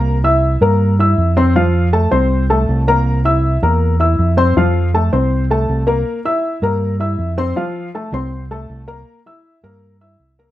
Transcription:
X:1
M:4/4
L:1/8
Q:1/4=160
K:F
V:1 name="Upright piano"
[B,Bb] [Eee']2 [B,Bb]2 [Eee']2 [Ccc'] | [F,Ff]2 [A,Aa] [Ccc']2 [A,Aa]2 [B,Bb]- | [B,Bb] [Eee']2 [B,Bb]2 [Eee']2 [Ccc'] | [F,Ff]2 [A,Aa] [Ccc']2 [A,Aa]2 [B,Bb]- |
[B,Bb] [Eee']2 [B,Bb]2 [Eee']2 [Ccc'] | [F,Ff]2 [A,Aa] [Ccc']2 [A,Aa]2 [B,Bb]- | [B,Bb] [Eee']2 [B,Bb]2 [Eee']2 [B,Bb] |]
V:2 name="Fingered electric bass" clef=bass
C,,3 G,,3 F,,2- | F,,3 C,,3 C,,2- | C,,3 E,,3 F,,2 | F,,3 C,,3 C,,2 |
z3 G,,3 F,,2 | z3 C,,3 C,,2 | z3 G,,3 C,,2 |]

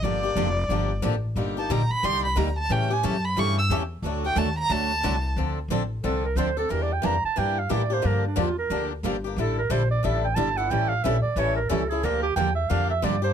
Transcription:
X:1
M:4/4
L:1/16
Q:"Swing" 1/4=180
K:Dphr
V:1 name="Violin"
d12 z4 | z2 a2 b2 =b2 c'2 b2 _b2 a2 | g2 _a2 =a2 =b2 ^c'2 =e'2 z4 | z2 g2 a2 b2 a6- a z |
[K:Dm] z16 | z16 | z16 | z16 |
z16 | z16 |]
V:2 name="Clarinet"
z16 | z16 | z16 | z16 |
[K:Dm] z8 A2 B2 c2 A2 | (3B2 d2 g2 b2 a2 g2 f2 d2 c2 | B2 D2 F2 B4 z6 | A2 B2 c2 d2 e2 g2 a2 ^f2 |
g2 f2 e2 d2 ^c2 B2 A2 ^G2 | B2 G2 g2 e2 f2 e2 d2 c2 |]
V:3 name="Steel-string acoustic guitar"
[D,F,B,DG]2 z2 [D,F,B,DG]2 z2 [D,F,B,DG]2 z2 [D,F,B,DG]2 z2 | [D,G,B,EG]2 z2 [D,G,B,EG]2 z2 [D,G,B,EG]2 z2 [D,G,B,EG]2 z2 | [=E,G,^C=EA]2 z2 [E,G,CEA]2 z2 [E,G,CEA]2 z2 [E,G,CEA]2 z2 | [D,A,D^FA]2 z2 [D,A,DFA]2 z2 [D,A,DFA]2 z2 [D,A,DFA]2 z2 |
[K:Dm] [D,F,CDA]2 z2 [D,F,CDA]2 z2 [D,F,CDA]2 z2 [D,F,CDA]2 z2 | [E,G,DEB]2 z2 [E,G,DEB]2 z2 [E,G,DEB]2 z2 [E,G,DEB]2 z2 | [D,F,B,DG]2 z2 [D,F,B,DG]2 z2 [D,F,B,DG]2 z2 [D,F,B,DG]2 z2 | [D,G,DEA]2 z2 [D,G,DEA]2 z2 [D,G,DEA]2 z2 [D,G,DEA]2 z2 |
[E,G,^CEA]2 z2 [E,G,CEA]2 z2 [E,G,CEA]2 z2 [E,G,CEA]2 z2 | [D,F,B,DG]2 z2 [D,F,B,DG]2 z2 [D,F,B,DG]2 z2 [D,F,B,DG]2 z2 |]
V:4 name="Steel-string acoustic guitar"
[D,F,B,DG]2 [B,DG]2 [D,F,B,DG]2 z2 [D,F,B,DG]2 z2 [D,F,B,DG]2 z2 | [D,G,B,EG]2 [B,EG]2 [D,G,B,EG]2 z2 [D,G,B,EG]2 z2 [D,G,B,EG]2 z2 | [^C,=E,A,^CG]2 [A,CG]2 [C,E,A,CG]2 z2 [C,E,A,CG]2 z2 [C,E,A,CG]2 z2 | [D,^F,A,D^F]2 [A,DF]2 [D,F,A,DF]2 z2 [D,F,A,DF]2 z2 [D,F,A,DF]2 z2 |
[K:Dm] [D,F,CDA]2 z2 [D,F,CDA]2 z2 [D,F,CDA]2 z2 [D,F,CDA]2 [CDA]2 | [E,B,DG]2 z2 [E,B,DG]2 z2 [E,B,DG]2 z2 [E,B,DG]2 [B,DG]2 | [D,F,B,DG]2 z2 [D,F,B,DG]2 z2 [D,F,B,DG]2 z2 [D,F,B,DG]2 [B,DG]2 | [D,G,DEA]2 z2 [D,G,DEA]2 z2 [D,G,DEA]2 z2 [D,G,DEA]2 [DEA]2 |
[E,G,^CEA]2 z2 [E,G,CEA]2 z2 [E,G,CEA]2 z2 [E,G,CEA]2 [CEA]2 | [D,F,B,DG]2 z2 [D,F,B,DG]2 z2 [D,F,B,DG]2 z2 [D,F,B,DG]2 [B,DG]2 |]
V:5 name="Upright bass" clef=bass
G,,,4 F,,,4 G,,,4 A,,,4 | G,,,4 B,,,2 z2 C,,4 D,,4 | A,,4 ^F,,4 G,,4 =E,,4 | D,,4 E,,4 D,,4 C,,4 |
[K:Dm] D,,4 A,,,4 C,,4 D,,4 | E,,4 F,,2 z2 G,,4 A,,4 | G,,4 E,,4 D,,4 G,,,4 | A,,,4 B,,,4 A,,,4 G,,,4 |
A,,,4 B,,,2 z2 A,,,4 ^C,,4 | D,,4 E,,4 F,,4 G,,4 |]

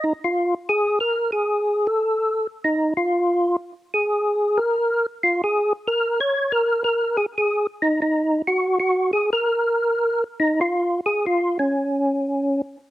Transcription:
X:1
M:4/4
L:1/8
Q:"Swing" 1/4=186
K:Bbm
V:1 name="Tonewheel organ"
E F2 z A2 B2 | A3 =A4 z | E2 F4 z2 | A4 B3 z |
F A2 z B2 d2 | B2 B2 A A2 z | E E3 G2 G2 | A B6 z |
E F3 A F2 D- | D6 z2 |]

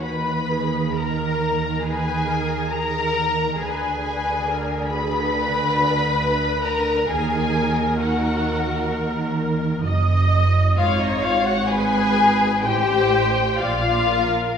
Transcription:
X:1
M:4/4
L:1/16
Q:1/4=67
K:Ebm
V:1 name="Violin section"
c'4 b4 a4 b4 | a6 c'8 b2 | a4 g6 z6 | f e f g a4 =g4 f4 |]
V:2 name="Viola section"
c2 A2 B4 c2 B2 A2 B2 | c2 c2 B2 A2 c8 | B12 e4 | d4 c4 =c4 =d2 B2 |]
V:3 name="Violin section"
c4 B4 A4 B4 | A6 c8 B2 | A4 G6 z6 | F E F G A4 =G4 F4 |]
V:4 name="Cello section" clef=bass
E,16 | =D,16 | E,12 G,,4 | A,,8 =A,,4 B,,4 |]
V:5 name="Double bass section" clef=bass
E,,16 | =D,,16 | E,,12 G,,,4 | A,,,8 =A,,,4 B,,,4 |]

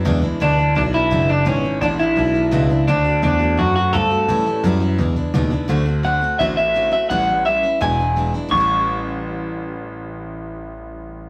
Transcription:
X:1
M:4/4
L:1/8
Q:1/4=170
K:Amix
V:1 name="Clean electric guitar"
z2 D2 D E2 D | C2 D E4- E | D2 D2 F F A2- | A2 z6 |
z2 f2 e e2 e | f2 e2 ^g3 z | c'8- | c'8 |]
V:2 name="Steel-string acoustic guitar"
[E,,B,,E,^G,DE] [E,G,DE] [E,,B,,E,G,DE] [E,G,DE] [E,G,DE] [E,G,DE] [E,,B,,E,G,DE] [E,G,DE] | [E,,B,,E,^G,DE] [E,G,DE] [E,,B,,E,G,DE] [E,G,DE] [E,G,DE] [E,G,DE] [E,,B,,E,G,DE] [E,G,DE] | [D,A,=CF] [A,CF] [D,A,CF] [A,CF] [D,A,CF] [A,CF] [D,A,CF] [A,CF] | [A,,E,G,CE] [G,CE] [A,,E,G,CE] [G,CE] [E,^G,DE] [E,G,DE] [E,,B,,E,G,DE] [E,G,DE] |
[D,A,=CF] [A,CF] [D,A,CF] [A,CF] [D,A,CF] [A,CF] [D,A,CF] [A,CF] | [A,,E,G,CE] [G,CE] [E,G,CE] [G,CE] [E,,B,,E,^G,DE] [E,G,DE] [E,G,DE] [E,G,DE] | [A,,E,G,CE]8- | [A,,E,G,CE]8 |]
V:3 name="Grand piano" clef=bass
E,, E,, D,,2 B,,,2 F,,,2 | ^G,,,2 A,,,2 B,,,2 C,,2 | D,,2 E,,2 F,,2 G,,2 | A,,2 F,,2 E,, E,, ^D,, D,, |
D,,4 A,,,4 | A,,,4 E,,,4 | A,,,8- | A,,,8 |]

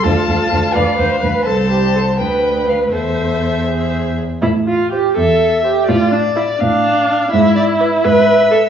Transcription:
X:1
M:6/8
L:1/16
Q:3/8=83
K:Am
V:1 name="Violin"
a6 f6 | a6 g4 f2 | e8- e2 z2 | z4 c2 z4 c2 |
z4 f2 z4 f2 | z4 d2 z4 d2 |]
V:2 name="Violin"
A2 A2 A2 B2 B2 B2 | c6 B6 | A6 ^G4 z2 | z6 e6 |
d6 f6 | e2 d2 B2 e6 |]
V:3 name="Viola"
F6 d2 c2 B2 | A2 G2 A2 B6 | c8- c z3 | E2 F2 G2 A4 G2 |
F2 D2 E2 D6 | E6 B4 A2 |]
V:4 name="Cello" clef=bass
D,,2 D,,2 D,,2 D,,2 D,,2 D,,2 | C,,6 D,,6 | E,,8- E,,2 z2 | A,,6 E,,6 |
A,,6 A,,6 | ^G,,6 G,,6 |]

